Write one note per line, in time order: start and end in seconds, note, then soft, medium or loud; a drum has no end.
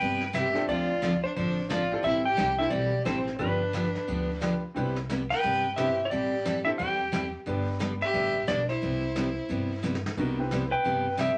0.00 0.55 G1 medium
0.00 0.22 C3 medium
0.00 0.22 G3 medium
0.00 0.22 B3 medium
0.00 0.22 E4 medium
0.00 0.22 G4 medium
0.00 0.31 B4 medium
0.00 0.31 G5 medium
0.00 brush sweep soft
0.21 snare soft
0.33 0.45 C3 medium
0.33 0.45 G3 medium
0.33 0.45 B3 medium
0.33 0.45 E4 medium
0.33 0.45 G4 medium
0.33 0.66 G4 medium
0.33 0.68 E5 medium
0.33 snare medium
0.33 hi-hat pedal medium
0.53 0.99 C4 medium
0.53 0.99 D4 medium
0.53 0.99 F4 medium
0.53 0.99 A4 medium
0.53 snare soft
0.68 1.22 D2 medium
0.68 0.89 D3 soft
0.68 0.89 F3 medium
0.68 0.90 C4 medium
0.68 0.90 D4 medium
0.68 1.20 F4 medium
0.68 0.90 A4 medium
0.68 1.20 D5 medium
0.68 brush sweep soft
1.02 1.13 D3 medium
1.02 1.13 F3 medium
1.02 1.13 C4 medium
1.02 1.13 D4 medium
1.02 1.14 A4 medium
1.02 snare medium
1.02 hi-hat pedal soft
1.24 1.35 D4 medium
1.24 1.35 C5 medium
1.36 1.91 A1 medium
1.36 1.57 D3 medium
1.36 1.57 F3 medium
1.36 1.57 C4 medium
1.36 1.57 D4 medium
1.36 1.68 D4 medium
1.36 1.58 A4 medium
1.36 1.70 C5 medium
1.36 brush sweep soft
1.69 1.81 D3 medium
1.69 1.81 F3 medium
1.69 1.81 C4 medium
1.69 1.81 D4 medium
1.69 2.02 F4 medium
1.69 1.81 A4 medium
1.69 2.05 D5 medium
1.69 snare medium
1.69 hi-hat pedal medium
1.92 2.36 C4 medium
1.92 2.36 E4 medium
1.92 2.36 G4 medium
1.92 2.36 A4 medium
2.03 2.31 A1 medium
2.03 2.24 E3 medium
2.03 2.25 G3 medium
2.03 2.25 C4 medium
2.03 2.25 E4 medium
2.03 2.24 E4 medium
2.03 2.25 A4 medium
2.03 2.26 E5 medium
2.03 brush sweep medium
2.26 2.57 G4 medium
2.26 2.60 G5 loud
2.37 2.67 C2 medium
2.37 2.48 E3 medium
2.37 2.49 G3 medium
2.37 2.49 C4 medium
2.37 2.49 E4 medium
2.37 2.49 A4 medium
2.37 snare medium
2.37 hi-hat pedal soft
2.59 2.70 C4 medium
2.59 2.71 E4 medium
2.59 2.75 E4 medium
2.59 2.71 G4 medium
2.59 2.71 A4 medium
2.59 2.72 E5 medium
2.70 3.01 B1 medium
2.70 2.92 E3 medium
2.70 2.92 G3 medium
2.70 2.92 C4 medium
2.70 2.92 E4 medium
2.70 3.06 G4 medium
2.70 2.93 A4 medium
2.70 3.05 D5 medium
2.70 brush sweep soft
3.05 3.35 A1 medium
3.05 3.17 E3 medium
3.05 3.17 G3 medium
3.05 3.24 C4 medium
3.05 3.17 C4 medium
3.05 3.38 C4 medium
3.05 3.25 E4 medium
3.05 3.17 E4 medium
3.05 3.25 G4 medium
3.05 3.17 A4 medium
3.05 3.25 A4 medium
3.05 3.39 C5 medium
3.05 snare medium
3.05 hi-hat pedal soft
3.27 snare soft
3.39 3.94 G1 medium
3.39 3.60 D3 medium
3.39 3.60 F3 medium
3.39 3.61 B3 medium
3.39 3.58 D4 medium
3.39 3.61 D4 medium
3.39 4.38 D4 medium
3.39 3.58 F4 medium
3.39 3.59 G4 medium
3.39 3.61 G4 medium
3.39 4.37 B4 medium
3.39 3.59 B4 medium
3.39 brush sweep soft
3.73 3.85 D3 medium
3.73 3.85 F3 medium
3.73 3.85 B3 medium
3.73 3.85 D4 medium
3.73 3.85 G4 medium
3.73 snare medium
3.73 hi-hat pedal soft
3.95 snare soft
4.07 4.62 D2 medium
4.07 4.29 D3 medium
4.07 4.29 F3 medium
4.07 4.29 B3 medium
4.07 4.29 D4 medium
4.07 4.29 G4 medium
4.07 brush sweep soft
4.41 4.52 D3 medium
4.41 4.53 F3 medium
4.41 4.53 B3 medium
4.41 4.60 D4 medium
4.41 4.53 D4 medium
4.41 4.60 F4 medium
4.41 4.60 G4 soft
4.41 4.53 G4 medium
4.41 4.61 B4 medium
4.41 snare medium
4.41 hi-hat pedal medium
4.74 5.30 C2 medium
4.74 4.97 C3 soft
4.74 4.97 G3 medium
4.74 4.97 B3 medium
4.74 4.94 C4 medium
4.74 4.94 E4 medium
4.74 4.97 E4 medium
4.74 4.95 G4 medium
4.74 4.97 G4 medium
4.74 4.95 B4 medium
4.74 brush sweep soft
4.96 snare soft
5.09 5.21 C3 medium
5.09 5.21 G3 medium
5.09 5.21 B3 medium
5.09 5.21 E4 medium
5.09 5.21 G4 medium
5.09 snare medium
5.09 hi-hat pedal soft
5.30 5.74 B4 medium
5.30 5.74 G5 medium
5.30 snare soft
5.43 5.98 G1 medium
5.43 5.64 C3 medium
5.43 5.64 G3 medium
5.43 5.65 B3 medium
5.43 5.65 E4 medium
5.43 5.65 G4 medium
5.43 brush sweep medium
5.76 5.88 C3 medium
5.76 5.89 G3 medium
5.76 5.89 B3 medium
5.76 5.96 C4 medium
5.76 5.89 E4 medium
5.76 5.96 E4 medium
5.76 6.03 G4 medium
5.76 5.97 G4 medium
5.76 5.89 G4 medium
5.76 5.97 B4 medium
5.76 6.06 E5 medium
5.76 snare medium
5.76 hi-hat pedal medium
6.05 6.09 E4 medium
6.05 6.10 C#5 medium
6.09 6.66 A1 medium
6.09 6.32 E3 medium
6.09 6.32 G3 medium
6.09 6.32 C4 medium
6.09 6.33 E4 medium
6.09 6.61 G4 medium
6.09 6.32 A4 medium
6.09 6.62 D5 medium
6.09 brush sweep soft
6.45 6.56 E3 medium
6.45 6.57 G3 medium
6.45 6.56 C4 medium
6.45 6.56 E4 medium
6.45 6.57 A4 medium
6.45 snare medium
6.45 hi-hat pedal soft
6.65 6.77 C4 medium
6.65 6.71 E4 medium
6.65 6.78 E4 medium
6.65 6.78 G4 medium
6.65 6.78 A4 medium
6.65 6.70 E5 medium
6.77 7.34 E2 medium
6.77 7.00 E3 medium
6.77 7.00 G3 medium
6.77 7.00 C4 medium
6.77 7.00 E4 medium
6.77 7.29 G4 medium
6.77 7.00 A4 medium
6.77 7.29 G5 medium
6.77 brush sweep soft
7.12 7.23 E3 medium
7.12 7.24 G3 medium
7.12 7.24 C4 medium
7.12 7.24 E4 medium
7.12 7.24 A4 medium
7.12 snare medium
7.12 hi-hat pedal soft
7.46 8.01 G1 medium
7.46 7.67 D3 medium
7.46 7.68 G3 medium
7.46 8.40 B3 medium
7.46 7.68 B3 medium
7.46 8.41 D4 medium
7.46 7.68 D4 medium
7.46 7.68 G4 medium
7.46 8.41 G4 medium
7.46 8.41 B4 medium
7.46 brush sweep medium
7.79 7.91 D3 medium
7.79 7.92 G3 medium
7.79 7.91 B3 medium
7.79 7.91 D4 medium
7.79 7.92 G4 medium
7.79 snare medium
7.79 hi-hat pedal medium
8.01 8.46 G4 medium
8.01 8.48 E5 loud
8.01 snare soft
8.13 8.43 A1 medium
8.13 8.35 D3 medium
8.13 8.35 G3 medium
8.13 8.35 B3 medium
8.13 8.35 D4 medium
8.13 8.35 G4 medium
8.13 brush sweep soft
8.47 8.77 B1 medium
8.47 8.59 D3 medium
8.47 8.59 G3 medium
8.47 8.59 B3 medium
8.47 8.59 D4 medium
8.47 8.69 D4 medium
8.47 8.60 G4 medium
8.47 8.68 D5 medium
8.47 snare medium
8.47 hi-hat pedal medium
8.69 9.80 E4 medium
8.69 9.79 C5 medium
8.69 snare soft
8.82 9.37 C2 medium
8.82 9.03 C3 soft
8.82 9.03 G3 medium
8.82 9.03 B3 medium
8.82 9.03 E4 medium
8.82 9.03 G4 medium
8.82 brush sweep soft
9.16 9.27 C3 medium
9.16 9.27 G3 medium
9.16 9.27 B3 medium
9.16 9.27 E4 medium
9.16 9.27 G4 medium
9.16 snare medium
9.16 hi-hat pedal medium
9.49 10.04 G2 medium
9.49 9.70 C3 medium
9.49 9.71 G3 medium
9.49 9.71 B3 medium
9.49 9.71 E4 medium
9.49 9.71 G4 medium
9.49 brush sweep medium
9.83 9.94 C3 medium
9.83 9.94 G3 medium
9.83 9.95 B3 medium
9.83 9.95 E4 medium
9.83 9.95 G4 medium
9.83 snare soft
9.83 hi-hat pedal soft
9.95 snare medium
10.06 snare medium
10.17 10.71 C2 medium
10.17 10.38 C3 medium
10.17 10.38 G3 medium
10.17 10.36 B3 medium
10.17 10.38 B3 medium
10.17 10.36 D#4 medium
10.17 10.39 E4 medium
10.17 10.37 F#4 medium
10.17 10.39 G4 medium
10.17 10.37 A#4 medium
10.17 brush sweep soft
10.17 kick medium
10.17 crash medium
10.39 10.68 C4 medium
10.39 10.68 E4 medium
10.39 10.68 G4 medium
10.39 10.69 B4 medium
10.51 10.62 C3 medium
10.51 10.62 G3 medium
10.51 10.63 B3 medium
10.51 10.63 E4 medium
10.51 10.63 G4 medium
10.51 snare medium
10.51 hi-hat pedal medium
10.71 11.15 B4 medium
10.71 11.20 G5 medium
10.84 11.38 G1 medium
10.84 11.05 C3 medium
10.84 11.06 G3 medium
10.84 11.06 B3 medium
10.84 11.06 E4 medium
10.84 11.06 G4 medium
10.84 brush sweep medium
11.17 11.29 C3 medium
11.17 11.29 G3 medium
11.17 11.29 B3 medium
11.17 11.29 E4 medium
11.17 11.29 G4 medium
11.17 11.38 G4 medium
11.17 11.38 E5 medium
11.17 snare medium
11.17 hi-hat pedal medium